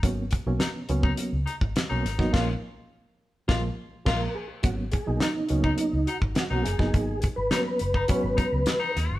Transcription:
<<
  \new Staff \with { instrumentName = "Tonewheel organ" } { \time 4/4 \key gis \dorian \tempo 4 = 104 r1 | r2. ais'8 gis'8 | fis'8 gis'8 dis'8 dis'4 fis'8 fis'8 gis'8~ | gis'8 gis'16 b'2~ b'8. r8 | }
  \new Staff \with { instrumentName = "Baritone saxophone" } { \time 4/4 \key gis \dorian r4 dis'16 r8 dis'16 r8 dis'16 r8 dis'8. | eis'8 r4. eis'8 r8 eis'8 r8 | r4 dis'16 r8 dis'16 r8 dis'16 r8 dis'8. | r4 dis'16 r8 dis'16 r8 dis'16 r8 dis'8. | }
  \new Staff \with { instrumentName = "Reed electric piano" } { \time 4/4 \key gis \dorian <fis ais b cis'>16 r8 <fis ais b cis'>16 r16 <b cis'>16 <fis ais b cis'>8. r4 <fis ais b cis'>16 r16 <fis ais b dis'>16 | <eis gis ais cis'>8 r4. <eis gis ais>8 r8 <eis gis ais>8 r8 | <fis ais b cis'>16 r8 <fis ais b dis'>16 r16 <b cis'>16 <fis ais b cis'>8. r4 <fis ais b cis'>16 r16 <fis ais b dis'>16~ | <fis ais b dis'>16 r8. <fis ais b cis'>8 r8 <fis gis b cis'>4 r4 | }
  \new Staff \with { instrumentName = "Fingered electric bass" } { \clef bass \time 4/4 \key gis \dorian gis,,8. b,,16 r8 cis,8 r16 cis,16 r16 gis,,16 r16 b,,16 gis,,16 a,,16 | ais,,8 r4. ais,,8 r8 ais,,8 r8 | gis,,8. b,,16 r8 cis,8 r16 cis,16 r16 gis,,16 r16 b,,16 fis,,16 g,,16 | gis,,8. gis,,16 r8 fis,,8 r16 gis,,16 r16 cis,16 r8 dis,16 g,,16 | }
  \new DrumStaff \with { instrumentName = "Drums" } \drummode { \time 4/4 <hh bd>8 <hh bd>8 <hh sn>8 hh16 bd16 hh8 hh16 bd16 <hh sn>8 <hh sn>16 <bd sn>16 | <cymc bd sn>4 r4 <bd sn>4 <cymc bd sn>4 | <hh bd>8 <hh bd>8 <hh sn>8 hh16 bd16 hh8 hh16 bd16 <hh sn>8 <hh sn>16 <bd sn>16 | <hh bd>8 <hh bd>8 <hh sn>8 hh16 bd16 <hh bd>8 <hh bd>8 <hh sn>8 <hh sn>8 | }
>>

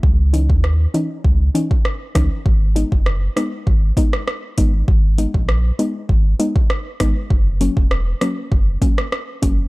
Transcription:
<<
  \new Staff \with { instrumentName = "Synth pluck" } { \time 4/4 \key gis \minor \tempo 4 = 99 r8 <e cis' dis'>8 r8 <e cis' dis'>8 r8 <e cis' dis'>8 r8 <e cis' dis'>8 | r8 <gis b dis'>8 r8 <gis b dis'>8 r8 <gis b dis'>8 r8 <gis b dis'>8 | r8 <gis b dis'>8 r8 <gis b dis'>8 r8 <gis b dis'>8 r8 <gis b dis'>8 | r8 <fis ais cis'>8 r8 <fis ais cis'>8 r8 <fis ais cis'>8 r8 <fis ais cis'>8 | }
  \new Staff \with { instrumentName = "Sub bass" } { \clef bass \time 4/4 \key gis \minor cis,8. dis,8. r8 cis,8 r4 cis,16 r16 | gis,,8. fis,,8. r8 gis,,8 r4 gis,,8 | gis,,8. ais,,8. r8 gis,,8 r4 gis,,16 r16 | fis,,8. e,,8. r8 fis,,8 r4 fis,,8 | }
  \new DrumStaff \with { instrumentName = "Drums" } \drummode { \time 4/4 bd8 hh16 bd16 ss8 hh8 bd8 hh16 bd16 ss8 <hh bd ss>8 | bd8 hh16 bd16 ss8 <hh ss>8 bd8 <hh bd>16 ss16 ss8 <hh bd>8 | bd8 hh16 bd16 ss8 hh8 bd8 hh16 bd16 ss8 <hh bd ss>8 | bd8 hh16 bd16 ss8 <hh ss>8 bd8 <hh bd>16 ss16 ss8 <hh bd>8 | }
>>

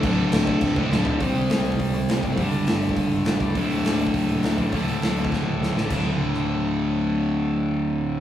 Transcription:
<<
  \new Staff \with { instrumentName = "Overdriven electric guitar" } { \clef bass \time 4/4 \key c \lydian \tempo 4 = 204 <d, a, d>2~ <d, a, d>8 <d, a, d>8 <d, a, d>4 | <c g c'>2.~ <c g c'>8 <c g c'>8 | <g, d g>2.~ <g, d g>8 <g, d g>8 | <d, a, d>2.~ <d, a, d>8 <d, a, d>8 |
<d, a, d>2.~ <d, a, d>8 <d, a, d>8 | <d, a, d>1~ | <d, a, d>1 | }
  \new Staff \with { instrumentName = "Distorted electric guitar" } { \clef bass \time 4/4 \key c \lydian <d, a, d>2~ <d, a, d>8 <d, a, d>8 <d, a, d>4 | <c g c'>1 | <g, d g>1 | <d, a, d>1 |
<d, a, d>1 | <d, a, d>1~ | <d, a, d>1 | }
  \new Staff \with { instrumentName = "Picked electric bass" } { \clef bass \time 4/4 \key c \lydian d,,4 d,,4 d,,8 d,,8 d,,4 | c,8 c,8 c,4 c,8 c,8 c,8 g,,8 | g,,8 g,,8 g,,4 g,,8 g,,8 g,,8 cis,8 | d,,8 d,,8 d,,4 d,,8 d,,8 d,,8 a,,8 |
d,,8 d,,8 d,,4 d,,8 d,,8 d,,8 a,,8 | d,,1~ | d,,1 | }
  \new DrumStaff \with { instrumentName = "Drums" } \drummode { \time 4/4 <cymc bd>4 <cymc sn>8 bd8 <cymc bd>8 bd8 sn8 tomfh8 | <hho bd>8 hho8 <hho sn>8 hho16 bd16 <hho bd>8 hho8 <hho sn>8 <hho bd>8 | <hho bd>8 hho8 <hho sn>8 hho16 bd16 <hho bd>8 hho8 <hho sn>8 <hho bd>8 | <hho bd>8 hho8 <hho sn>8 hho16 bd16 <hho bd>8 hho8 <hho sn>8 <hho bd>8 |
<hho bd>8 hho8 <hho sn>8 hho16 bd16 <bd sn>4 sn8 sn8 | <cymc bd>4 r8 ss8 r4 r4 | r4 r4 r4 r4 | }
>>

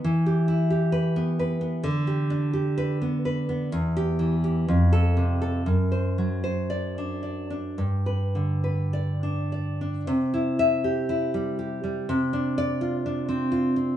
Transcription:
\new Staff \with { instrumentName = "Nylon-string guitar" } { \time 2/4 \key e \minor \tempo 4 = 61 << { r4 b'8 r8 | \key c \major r4 b'8 r8 | r16 g'8 r8 a'8 r16 | r4 d''8 r8 |
r4 d''8 r8 | r8 e''8 r4 | r8 d''8 r4 | } \\ { e16 g'16 e'16 g'8 b16 b'16 b16 | d16 g'16 d'16 g'8 b16 b'16 b16 | e,8 e16 g'16 f,8 c16 a'16 | fis,16 c''16 fis16 c''8 d'16 d''16 d'16 |
g,16 b'16 d16 b'8 d'16 d''16 d'16 | c16 e'8 g'16 e'16 g16 g'16 g16 | c16 d'8 f'16 d'16 c'16 f'16 c'16 | } >> }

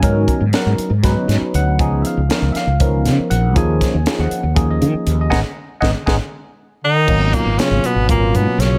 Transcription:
<<
  \new Staff \with { instrumentName = "Tine electric piano" } { \time 7/8 \key gis \dorian \tempo 4 = 119 << { gis''4 fis''8 r4. fis''8~ | fis''8 <e'' eis''>4 <e'' eis''>4. fis''8 | gis''4 r16 fis''4 dis''4 dis''16 | <gis b dis' dis'' fis'' gis''>8 r8 <gis b dis' dis'' fis'' gis''>8 <gis b dis' dis'' fis'' gis''>8 r4. |
r2. r8 | } \\ { <fis b cis' dis' ais'>4 <fis b cis' dis' ais'>8 r8 <fis b cis' dis' b'>4. | <eis b cis' dis' gis'>4 <eis b cis' dis' ais'>8 r8 <eis b cis' dis' ais'>4. | <eis ais cis' dis' gis'>4 <eis ais cis' dis' gis'>8 r8 <eis ais cis' dis' gis'>4. | r2. r8 |
<fis ais b cis' dis'>4 <fis ais b cis' eis'>8 r8 <fis ais b cis' eis'>4. | } >> }
  \new Staff \with { instrumentName = "Tenor saxophone" } { \time 7/8 \key gis \dorian r2. r8 | r2. r8 | r2. r8 | r2. dis'8~ |
dis'8 ais8 cis'8 b8 ais8 b8 cis'8 | }
  \new Staff \with { instrumentName = "Bass clarinet" } { \clef bass \time 7/8 \key gis \dorian r2. r8 | r2. r8 | r2. r8 | r2. dis8~ |
dis8 ais,8 cis8 b,8 ais,8 b,8 cis8 | }
  \new Staff \with { instrumentName = "Fretless electric bass" } { \clef bass \time 7/8 \key gis \dorian gis,8 r16 gis,16 r16 gis,16 r16 gis,8 r16 gis,16 r16 d,8 | cis,8 r16 cis,16 r16 cis,16 r16 cis,8. cis16 r16 ais,,8 | dis,8 r16 dis,16 r16 dis,16 r16 dis,8. dis16 r16 dis,8 | gis,,16 r8. gis,,16 r16 gis,,16 r4. r16 |
gis,,8 r16 gis,,16 r16 gis,,16 r16 gis,,8. gis,16 r16 b,,8 | }
  \new DrumStaff \with { instrumentName = "Drums" } \drummode { \time 7/8 <hh bd>8 <hh bd>8 <hh sn>8 hh8 <hh bd sn>8 <hh sn>8 hh8 | <hh bd>8 hh8 <hh sn>8 <hh sn>8 <hh bd>8 <hh sn>8 hh8 | <hh bd>8 <hh bd sn>8 <hh sn>8 hh8 <hh bd>8 hh8 hh8 | <bd sn>4 <bd sn>8 <bd sn>8 r4. |
<cymc bd>8 <hh bd>8 <hh sn>8 hh8 <hh bd>8 hh8 <hh sn>8 | }
>>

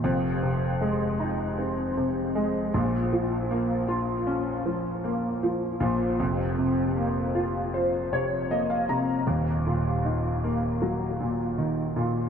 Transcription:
<<
  \new Staff \with { instrumentName = "Grand piano" } { \time 4/4 \key bes \minor \tempo 4 = 78 r1 | r1 | r2 r8 des''8 ees''16 f''16 bes''8 | r1 | }
  \new Staff \with { instrumentName = "Grand piano" } { \clef bass \time 4/4 \key bes \minor <f,, f,>8 c8 aes8 ees'8 c'8 c8 aes8 <bes,, bes,>8 | f8 bes8 f'8 des'8 f8 bes8 f8 <bes,, bes,>8 | <f,, f,>8 c8 bes8 f'8 c''8 c8 bes8 c8 | <ees,, ees,>8 bes,8 ees8 bes8 ges8 bes,8 ees8 bes,8 | }
>>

